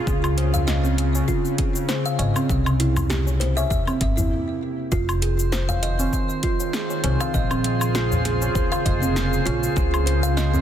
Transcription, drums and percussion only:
0.07 kick, cabasa
0.24 cabasa, low woodblock
0.38 closed hi-hat
0.54 tabla ge, cabasa
0.68 snare, cabasa
0.84 tabla tin, cabasa
0.98 closed hi-hat, tabla na
1.15 tabla na, cabasa
1.28 kick, cabasa
1.45 cabasa
1.58 kick, closed hi-hat
1.75 tabla tin, cabasa
1.89 snare, cabasa
2.05 tabla tin, cabasa
2.19 closed hi-hat, tabla na
2.36 cabasa, low woodblock
2.50 kick, cabasa
2.66 cabasa, low woodblock
2.80 closed hi-hat
2.96 tabla ge, cabasa, low woodblock
3.10 snare, cabasa
3.27 tabla tin, cabasa
3.41 snare, closed hi-hat
3.58 tabla na, cabasa
3.71 kick, cabasa
3.87 tabla na, cabasa, low woodblock
4.01 kick, closed hi-hat
4.18 tabla tin, tabla ge, cabasa
4.92 kick, cabasa
5.09 cabasa, low woodblock
5.22 closed hi-hat
5.39 cabasa
5.53 snare, cabasa
5.69 tabla tin, tabla ge, cabasa
5.83 closed hi-hat, tabla na
6.00 tabla na, cabasa
6.13 kick, cabasa
6.30 cabasa
6.43 kick, closed hi-hat
6.60 tabla tin, cabasa
6.73 snare, cabasa
6.90 tabla tin, cabasa
7.04 closed hi-hat, tabla na
7.20 cabasa, low woodblock
7.34 kick, cabasa
7.51 cabasa, low woodblock
7.64 closed hi-hat
7.81 cabasa, low woodblock
7.95 snare, cabasa
8.11 tabla tin, tabla ge, cabasa
8.25 snare, closed hi-hat
8.42 tabla na, cabasa
8.55 kick, cabasa
8.72 cabasa, low woodblock
8.86 kick, closed hi-hat
9.03 tabla tin, cabasa
9.16 snare, cabasa
9.33 cabasa
9.46 closed hi-hat, tabla na
9.63 cabasa
9.77 kick, cabasa
9.94 cabasa, low woodblock
10.07 closed hi-hat
10.24 cabasa
10.37 snare, cabasa
10.54 tabla tin, tabla ge, cabasa

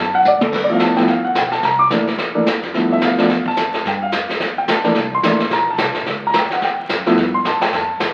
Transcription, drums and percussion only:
0.25 hi-hat pedal
0.41 mid tom
0.52 brush sweep, kick, snare, crash
0.79 kick, snare, hi-hat pedal
0.96 kick, snare
1.07 brush sweep, kick, snare
1.35 kick, snare, hi-hat pedal
1.52 snare
1.63 brush sweep, kick, snare
1.90 kick, snare, hi-hat pedal
2.07 snare
2.18 brush sweep, kick, snare
2.46 kick, snare, hi-hat pedal
2.63 snare
2.74 brush sweep, kick, snare
3.01 kick, snare, hi-hat pedal
3.18 snare
3.30 brush sweep, kick, snare
3.46 kick
3.57 kick, snare, hi-hat pedal
3.74 snare
3.85 brush sweep, kick, snare
4.12 kick, snare, hi-hat pedal
4.29 snare
4.40 brush sweep, kick, snare
4.68 kick, snare, hi-hat pedal
4.84 snare
4.95 brush sweep, kick, snare
5.23 kick, snare, hi-hat pedal
5.40 snare
5.51 brush sweep, kick, snare
5.78 kick, snare, hi-hat pedal
5.94 snare
6.06 brush sweep, kick, snare
6.34 kick, snare, hi-hat pedal
6.51 snare
6.62 brush sweep, kick, snare
6.89 kick, snare, hi-hat pedal
7.06 snare
7.17 brush sweep, kick, snare
7.45 kick, snare, hi-hat pedal
7.61 snare
7.72 brush sweep, kick, snare
8.00 kick, snare, hi-hat pedal

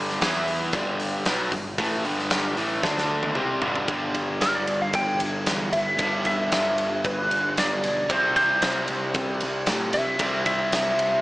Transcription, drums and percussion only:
0.09 snare
0.21 snare, open hi-hat
0.48 open hi-hat
0.73 kick, open hi-hat
1.00 open hi-hat
1.25 snare, open hi-hat
1.52 kick, open hi-hat
1.78 kick, open hi-hat
2.05 open hi-hat
2.19 snare
2.30 snare, open hi-hat
2.57 open hi-hat
2.83 kick, snare
2.98 snare
3.23 high tom
3.35 mid tom
3.62 floor tom
3.75 floor tom
3.88 kick, ride
4.15 kick, ride
4.41 snare, ride
4.67 ride
4.93 kick, ride
5.20 ride
5.46 snare, ride
5.73 ride
5.98 kick, ride
6.25 kick, ride
6.52 snare, ride
6.78 ride
7.04 kick, ride
7.31 ride
7.57 snare, ride
7.84 snare, ride
8.10 kick, ride
8.36 kick, ride
8.62 snare, ride
8.88 ride
9.14 kick, ride
9.40 ride
9.66 snare, ride
9.93 snare, ride
10.19 kick, ride
10.46 kick, ride
10.72 snare, ride
10.99 ride

